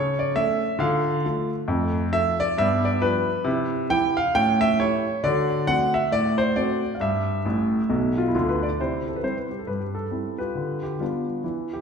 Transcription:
grand piano
Already playing: C#3 C#5
0.19 D5
0.36 A3 C#4 A4 E5
0.79 D3 F4 F5
1.25 A3 F4 A4
1.68 F2 A3
2.13 F3 F4 A4 E5
2.40 D5
2.58 G2 B3 E5
2.85 D5
3.01 F3 D4 G4 B4
3.44 C3 E4
3.90 E3 E4 G4 G5
4.17 F5
4.35 A2 C#4 G5
4.61 E5
4.79 A3 E4 G4 C#5
5.24 D3 F#4 D5
5.67 A3 C4 F#4 F#5
5.94 E5
6.11 A2 D5
6.38 C5
6.56 A3 C4 F#4 D5
6.95 F5
7.00 G2 E5
7.45 A1 A2
7.89 B1 B2
8.18 F4
8.28 E4
8.35 D2 D3 F4
8.49 B4
8.63 D5
8.80 C3 E4 G4 C5
9.08 A4
9.16 B4
9.23 G3 C4 E4 C5
9.37 B4
9.51 G4
9.59 A4
9.67 G2 B4
9.80 G4
9.95 A4
10.11 G3 C4 E4
10.38 F4 G4 B4
10.55 D3
10.83 G4
10.99 G3 B3 D4 F4
11.44 E3
11.73 G4

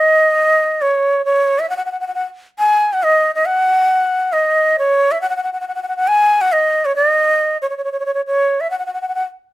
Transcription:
bansuri
Already playing: D#5
0.82 C#5
1.25 C#5
1.59 E5
1.70 F#5
1.77 F#5
1.85 F#5
1.92 F#5
2.00 F#5
2.07 F#5
2.14 F#5
2.59 G#5
2.93 F#5
3.03 D#5
3.35 D#5
3.46 F#5
4.33 D#5
4.79 C#5
5.12 E5
5.21 F#5
5.30 F#5
5.36 F#5
5.44 F#5
5.53 F#5
5.61 F#5
5.68 F#5
5.75 F#5
5.83 F#5
5.88 F#5
5.97 F#5
6.08 G#5
6.41 F#5
6.52 D#5
6.85 C#5
6.96 D#5
7.62 C#5
7.70 C#5
7.77 C#5
7.84 C#5
7.92 C#5
8.00 C#5
8.06 C#5
8.14 C#5
8.27 C#5
8.61 E5
8.71 F#5
8.79 F#5
8.86 F#5
8.94 F#5
9.01 F#5
9.08 F#5
9.15 F#5

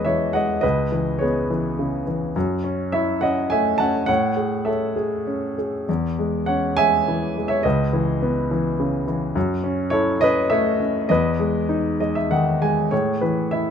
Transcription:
grand piano
Already playing: E2 G#3 C#4 G#4 B4 C#5 D#5
0.05 E3 C#5 E5
0.33 G#3 D#5 F#5
0.61 C#2 B4 D#5
0.92 E3
1.19 B3 G#4 C#5
1.50 E3
1.79 C#3
2.07 E3
2.36 F#2
2.64 C#4
2.92 E4 C#5 E5
3.21 C#4 D#5 F#5
3.50 A3 E5 G#5
3.78 C#4 F#5 A5
4.06 A2 C#5 F#5
4.37 G#4
4.65 A4 C#5 E5
4.96 G#4
5.27 C#4
5.58 G#4
5.89 E2
6.19 G#3
6.46 C#4 C#5 F#5
6.77 G#3 E5 G#5
7.08 E3
7.37 G#3
7.48 C#5 E5
7.63 C#2 B4 D#5
7.93 E3
8.22 B3
8.51 E3
8.80 C#3
9.07 E3
9.35 F#2
9.63 C#4
9.90 E4 A4 C#5
10.20 C#4 B4 D#5
10.50 A3 C#5 E5
10.80 C#4
11.09 E2 B4 D#5
11.39 G#3
11.69 D#4
12.00 G#3 D#5
12.15 E5
12.31 D#3 F#5
12.62 G#3 G#5
12.91 A2 G#4 C#5
13.21 E3 B4
13.51 E4 E5

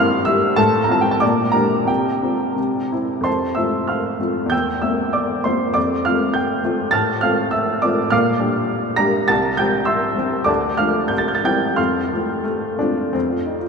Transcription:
upright piano
Already playing: G2 A#3 C4 E4 C5 F5 C6 F6
0.25 G3 E5 E6
0.56 A2 A4 A5
0.84 A#5
0.89 C4 F4 A5
1.01 G5
1.11 A5
1.20 A#2 D5 D6
1.52 D4 G4 A#4 A#5
1.85 C3 G4 G5
2.23 C4 F4
2.56 C3
2.92 C4 E4
3.21 F2 C5 A5 C6
3.55 A3 C4 F4 E5 E6
3.87 F5 C6 F6
4.20 A3 C4 F4
4.46 E2 G6
4.51 G5 E6
4.82 A#3 C4 E5 E6
5.13 D5 D6
5.44 A#3 C4 C5 C6
5.74 F2 D5 D6
6.05 A3 C4 F4 F5 F6
6.34 G5 G6
6.64 A3 C4 F4
6.91 A2 A5 F6 A6
7.21 A3 C4 F4 F5 F6
7.51 E5 E6
7.82 A3 C4 F4 D5 D6
8.10 A#2 F5 D6 F6
8.39 G3 D4 G4
8.96 G3 D4 G4 A#5 A#6
9.28 C2 A5 A6
9.57 G3 C4 G4 G5 G6
9.85 E5 C6 E6
10.15 G3 C4 G4
10.44 D2 D5 A5 D6
10.77 F3 A3 D4 F5 F6
11.08 C2 G6
11.18 A6
11.28 G6
11.35 A6
11.44 G3 C4 E4 G5 G6
11.76 F2 F5 C6 F6
12.13 A3 C4 F4
12.44 A3
12.79 A3 C4 D4 F4
13.13 F2 C4
13.30 F4
13.47 D#4
13.61 F4

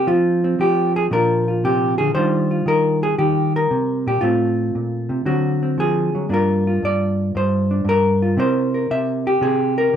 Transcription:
hollow-body jazz guitar
0.07 F3 C4 F4
0.44 C4
0.59 F3 G4
0.96 G#4
1.11 A#2 F3 D4 F4 A#4
1.48 F4
1.64 C3 G4
1.98 D3 G#4
2.14 D#3 G3 D4 F4 C5
2.51 F4
2.66 D#3 A#4
3.03 G#4
3.18 D#3 G4
3.56 A#4
3.71 C3
4.07 A#2 G4
4.21 A2 A3 C4 F4
4.75 A#2
5.09 C3
5.25 D3 F#3 C4 F#4
5.63 C4
5.78 F3 G#4
6.15 F#3
6.29 G2 A#3 D4 F4
6.34 A#4
6.67 F4
6.83 G2 D5
7.35 G2 C5
7.71 D4
7.84 G2
7.89 A#4
8.22 F4
8.37 C3 C4 E4 A#4 C5
8.74 A#4
8.90 C3 E5
9.27 G4
9.41 C3 G#4
9.78 A#4

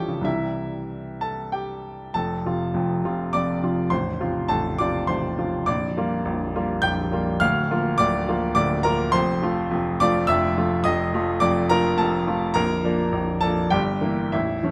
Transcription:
grand piano
Already playing: A#1 E3 F3 G3 A#3 C#4 G4 A4 C#5 G5 A5 C#6
0.08 C#3
0.21 C2 C3 E3 G3 E5
0.26 E4
1.21 A4 A5
1.52 G4 G5
2.14 F1 F2 A4 A5
2.45 C3 F3 F4
2.74 F1 F2
3.04 C3 F3 F4
3.33 F1 F2 D5 D6
3.63 C3 F3 F4
3.90 A0 A1 C5 C6
4.20 C3 F3 F4
4.48 A0 A1 A4 A5
4.79 C3 F3 F4 D5 D6
5.07 A0 A1 C5 C6
5.38 C3 F3 F4
5.66 A#0 A#1 D5 D6
5.97 G3 A#3 F4
6.25 A#0 A#1
6.55 G3 A#3 F4
6.82 A#0 A#1 G5 G6
7.12 G3 A#3 F4
7.40 D1 D2 F5 F6
7.71 F3 A#3 F4
7.98 D1 D2 D5 D6
8.28 F3 A#3 F4
8.55 D1 D2 D5 D6
8.83 F3 A#3 F4 A#4 A#5
9.12 F1 F2 C5 C6
9.42 F3 A3 F4
9.71 F1 F2
10.00 F3 A3 F4 D5 D6
10.27 F1 F2 E5 E6
10.57 F3 A3 F4
10.84 F1 F2 D#5 D#6
11.13 F3 A3 F4
11.40 F1 F2 D5 D6
11.70 F3 A3 F4 A#4 A#5
11.98 F1 F2 A4 A5
12.28 F3 A3 F4
12.54 A#0 A#1 A#4 A#5
12.84 F3 A#3 D4
13.12 A#0 A#1
13.41 F3 A#3 D4 A4 A5
13.70 G1 G2 G4 G5
14.01 E3 A#3 E4
14.32 A0 A1 E4 E5
14.63 E3 A3 C#4

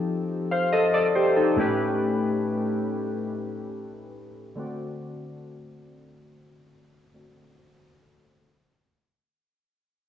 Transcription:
synth keys
Already playing: F3 C4 D#4 G4 A4
0.51 C5 F5
0.72 A4 D#5
0.94 A4 D5
1.15 G4 C5
1.37 D#4 A4
1.56 A2 A3 C#4 G4
1.61 B4
4.56 D3 A3 C4 F#4
4.60 D5
7.14 D3 A3 C4 F#4 D5
7.37 F#5
7.58 F#4 C5 A5
7.80 A#5
8.02 A4 D5
8.23 C5 F#5

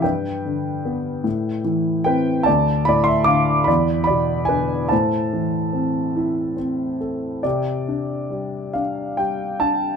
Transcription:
grand piano
0.02 G2 B4 G5
0.45 D3
0.85 B3
1.24 A2
1.64 E3
2.04 C4 B4 G5
2.43 D5 A5
2.47 D2
2.85 A2 D5 B5
3.04 E5 C6
3.24 D3 F5 D6
3.64 E2 D5 B5
4.04 D5 B5
4.10 B2
4.45 B4 G#5
4.49 D3
4.89 A2 C5 A5
5.33 E3
5.73 C4
6.16 E4
6.57 C4
7.01 A4
7.43 C3 G4 D5
7.88 D4
8.31 G3
8.73 D4 F5
9.17 G3 G5
9.60 D4 A5

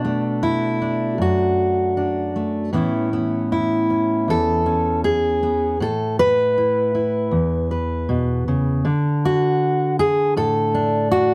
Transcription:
steel-string acoustic guitar
Already playing: B2 D3 D4
0.05 A3
0.43 E4
0.82 D4
1.18 F#2 F#4
1.97 D4
2.36 A3
2.73 A2 E3 B3 C#4 E4
3.13 B3
3.52 E4
3.90 C#4
4.28 E2 A4
4.66 C#4
5.04 G#4
5.43 B3
5.80 A2 A4
6.19 B4
6.58 E4
6.95 E4
7.31 E2
7.71 B4
8.09 B2
8.48 C#3
8.85 D3
9.25 F#4
9.99 G#4
10.37 A2 A4
10.74 D4
11.12 F#4

